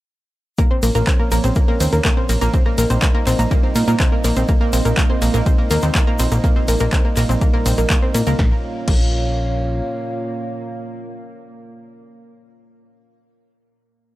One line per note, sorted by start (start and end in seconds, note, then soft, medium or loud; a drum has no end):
0.58 8.38 A#2 medium
0.58 2.52 F3 medium
0.58 8.38 A#3 medium
0.58 0.66 A#3 loud
0.58 2.52 A#3 medium
0.58 2.52 C#4 medium
0.58 0.66 A#4 medium
0.58 2.52 A#4 medium
0.58 2.52 C#5 medium
0.58 kick loud
0.58 closed hi-hat medium
0.58 shaker soft
0.71 0.75 C4 medium
0.71 0.75 C5 medium
0.83 0.90 A#1 loud
0.83 0.90 A#3 medium
0.83 0.90 A#4 medium
0.83 cross-stick medium
0.83 open hi-hat loud
0.83 ride medium
0.83 shaker loud
0.95 1.02 A#1 medium
0.95 1.03 A#3 loud
0.95 1.03 A#4 medium
0.95 closed hi-hat medium
0.95 shaker medium
1.07 1.12 C4 medium
1.07 1.12 C5 medium
1.07 kick loud
1.07 clap loud
1.07 closed hi-hat medium
1.07 shaker soft
1.19 1.27 A#3 medium
1.19 1.27 A#4 medium
1.32 1.39 A#1 medium
1.32 1.39 A#3 loud
1.32 1.39 A#4 medium
1.32 open hi-hat medium
1.32 ride medium
1.32 shaker medium
1.44 1.51 A#1 medium
1.44 1.48 C4 medium
1.44 1.48 C5 medium
1.44 cross-stick medium
1.44 closed hi-hat medium
1.44 shaker medium
1.55 1.64 A#3 medium
1.55 1.64 A#4 medium
1.55 kick loud
1.55 closed hi-hat medium
1.55 shaker soft
1.68 1.76 A#3 loud
1.68 1.76 A#4 medium
1.80 1.88 D#2 medium
1.80 1.85 C4 medium
1.80 1.85 C5 medium
1.80 open hi-hat loud
1.80 ride medium
1.80 shaker medium
1.93 2.00 D#2 medium
1.93 2.00 A#3 medium
1.93 2.00 A#4 medium
1.93 closed hi-hat medium
1.93 shaker medium
2.04 2.12 A#3 loud
2.04 2.12 A#4 medium
2.04 kick loud
2.04 cross-stick medium
2.04 clap loud
2.04 closed hi-hat medium
2.04 shaker soft
2.17 2.22 C4 medium
2.17 2.22 C5 medium
2.29 2.37 A#1 loud
2.29 2.37 A#3 medium
2.29 2.37 A#4 medium
2.29 open hi-hat medium
2.29 ride medium
2.29 shaker medium
2.41 2.49 A#1 medium
2.41 2.49 A#3 loud
2.41 2.49 A#4 medium
2.41 closed hi-hat medium
2.41 shaker medium
2.54 4.47 G3 medium
2.54 2.58 C4 medium
2.54 6.40 C4 medium
2.54 4.47 D#4 medium
2.54 2.58 C5 medium
2.54 6.40 C5 medium
2.54 8.35 D#5 medium
2.54 kick loud
2.54 closed hi-hat medium
2.54 shaker soft
2.66 2.73 A#3 medium
2.66 2.73 A#4 medium
2.66 cross-stick medium
2.78 2.85 A#1 loud
2.78 2.86 A#3 loud
2.78 2.86 A#4 medium
2.78 open hi-hat loud
2.78 ride medium
2.78 shaker medium
2.90 2.98 A#1 medium
2.90 2.95 C4 medium
2.90 2.95 C5 medium
2.90 closed hi-hat medium
2.90 shaker medium
3.02 3.10 A#3 medium
3.02 3.10 A#4 medium
3.02 kick loud
3.02 clap loud
3.02 closed hi-hat medium
3.02 shaker soft
3.15 3.22 A#3 loud
3.15 3.22 A#4 medium
3.27 3.34 A#1 medium
3.27 3.31 C4 medium
3.27 3.31 C5 medium
3.27 cross-stick soft
3.27 clap soft
3.27 open hi-hat medium
3.27 ride medium
3.27 shaker medium
3.39 3.46 A#1 medium
3.39 3.46 A#3 medium
3.39 3.46 A#4 medium
3.39 closed hi-hat medium
3.39 shaker medium
3.51 3.59 A#3 loud
3.51 3.59 A#4 medium
3.51 kick loud
3.51 closed hi-hat medium
3.51 shaker soft
3.63 3.68 C4 medium
3.63 3.68 C5 medium
3.75 3.83 A#2 medium
3.75 3.83 A#3 medium
3.75 3.83 A#4 medium
3.75 open hi-hat loud
3.75 ride medium
3.75 shaker loud
3.88 3.95 A#2 medium
3.88 3.95 A#3 loud
3.88 3.95 A#4 medium
3.88 cross-stick medium
3.88 closed hi-hat medium
3.88 shaker medium
4.00 4.04 C4 medium
4.00 4.04 C5 medium
4.00 kick loud
4.00 clap loud
4.00 closed hi-hat medium
4.00 shaker soft
4.12 4.20 A#3 medium
4.12 4.20 A#4 medium
4.24 4.32 A#1 loud
4.24 4.32 A#3 loud
4.24 4.32 A#4 medium
4.24 open hi-hat loud
4.24 ride medium
4.24 shaker medium
4.36 4.44 A#1 medium
4.36 4.41 C4 medium
4.36 4.41 C5 medium
4.36 closed hi-hat medium
4.36 shaker medium
4.48 6.42 G#3 medium
4.48 4.56 A#3 medium
4.48 8.35 D#4 medium
4.48 4.56 A#4 medium
4.48 kick loud
4.48 cross-stick medium
4.48 closed hi-hat medium
4.48 shaker soft
4.61 4.68 A#3 loud
4.61 4.68 A#4 medium
4.73 4.80 A#1 loud
4.73 4.78 C4 medium
4.73 4.78 C5 medium
4.73 open hi-hat loud
4.73 ride medium
4.73 shaker loud
4.85 4.93 A#1 medium
4.85 4.93 A#3 medium
4.85 4.93 A#4 medium
4.85 closed hi-hat medium
4.85 shaker medium
4.97 5.05 A#3 loud
4.97 5.05 A#4 medium
4.97 kick loud
4.97 clap loud
4.97 closed hi-hat medium
4.97 shaker soft
5.10 5.14 C4 medium
5.10 5.14 C5 medium
5.10 cross-stick medium
5.22 5.29 A#1 medium
5.22 5.29 A#3 medium
5.22 5.29 A#4 medium
5.22 open hi-hat medium
5.22 ride medium
5.22 shaker medium
5.34 5.42 A#1 medium
5.34 5.42 A#3 loud
5.34 5.42 A#4 medium
5.34 closed hi-hat medium
5.34 shaker medium
5.46 5.51 C4 medium
5.46 5.51 C5 medium
5.46 kick loud
5.46 closed hi-hat medium
5.46 shaker soft
5.58 5.66 A#3 medium
5.58 5.66 A#4 medium
5.70 5.78 D#2 medium
5.70 5.78 A#3 loud
5.70 5.78 A#4 medium
5.70 cross-stick medium
5.70 open hi-hat loud
5.70 ride medium
5.70 shaker medium
5.82 5.90 D#2 medium
5.82 5.87 C4 medium
5.82 5.87 C5 medium
5.82 closed hi-hat medium
5.82 shaker medium
5.95 6.03 A#3 medium
5.95 6.03 A#4 medium
5.95 kick loud
5.95 clap loud
5.95 closed hi-hat medium
5.95 shaker soft
6.07 6.15 A#3 loud
6.07 6.15 A#4 medium
6.19 6.27 A#1 loud
6.19 6.24 C4 medium
6.19 6.24 C5 medium
6.19 open hi-hat loud
6.19 ride medium
6.19 shaker loud
6.32 6.39 A#1 medium
6.32 6.39 A#3 medium
6.32 6.39 A#4 medium
6.32 cross-stick medium
6.32 closed hi-hat medium
6.32 shaker medium
6.44 8.37 G3 medium
6.44 6.51 A#3 loud
6.44 8.37 A#3 medium
6.44 6.51 A#4 medium
6.44 8.37 A#4 medium
6.44 kick loud
6.44 closed hi-hat medium
6.44 shaker soft
6.56 6.61 C4 medium
6.56 6.61 C5 medium
6.68 6.76 A#1 medium
6.68 6.76 A#3 medium
6.68 6.76 A#4 medium
6.68 open hi-hat loud
6.68 ride medium
6.68 shaker loud
6.79 6.88 A#1 medium
6.79 6.88 A#3 loud
6.79 6.88 A#4 medium
6.79 closed hi-hat medium
6.79 shaker medium
6.92 6.97 C4 medium
6.92 6.97 C5 medium
6.92 kick loud
6.92 cross-stick medium
6.92 clap loud
6.92 closed hi-hat medium
6.92 shaker soft
7.05 7.12 A#3 medium
7.05 7.12 A#4 medium
7.17 7.24 A#1 medium
7.17 7.25 A#3 loud
7.17 7.25 A#4 medium
7.17 clap soft
7.17 open hi-hat medium
7.17 ride medium
7.17 shaker medium
7.29 7.37 A#1 medium
7.29 7.34 C4 medium
7.29 7.34 C5 medium
7.29 closed hi-hat medium
7.29 shaker medium
7.41 7.49 A#3 medium
7.41 7.49 A#4 medium
7.41 kick loud
7.41 closed hi-hat medium
7.41 shaker soft
7.53 7.61 A#3 loud
7.53 7.61 A#4 medium
7.53 cross-stick medium
7.66 7.73 A#1 medium
7.66 7.70 C4 medium
7.66 7.70 C5 medium
7.66 open hi-hat loud
7.66 ride medium
7.66 shaker loud
7.78 7.85 A#1 medium
7.78 7.86 A#3 medium
7.78 7.86 A#4 medium
7.78 closed hi-hat medium
7.78 shaker medium
7.90 7.98 A#3 loud
7.90 7.98 A#4 medium
7.90 kick loud
7.90 clap loud
7.90 closed hi-hat medium
7.90 shaker soft
8.02 8.07 C4 medium
8.02 8.07 C5 medium
8.14 8.22 A#2 medium
8.14 8.22 A#3 medium
8.14 8.22 A#4 medium
8.14 cross-stick medium
8.14 open hi-hat medium
8.14 ride medium
8.14 shaker loud
8.27 8.34 C#2 medium
8.27 8.34 A#3 loud
8.27 8.34 A#4 medium
8.27 closed hi-hat medium
8.27 shaker medium
8.39 8.53 A#1 loud
8.39 12.02 A#2 medium
8.39 12.02 A#3 medium
8.39 8.53 A#3 loud
8.39 12.02 A#3 medium
8.39 12.02 C#4 medium
8.39 12.02 F4 medium
8.39 12.02 C#5 medium
8.39 12.02 F5 medium
8.39 kick loud
8.39 snare medium
8.88 9.81 A#1 medium
8.88 9.01 A#3 medium
8.88 kick loud
8.88 crash medium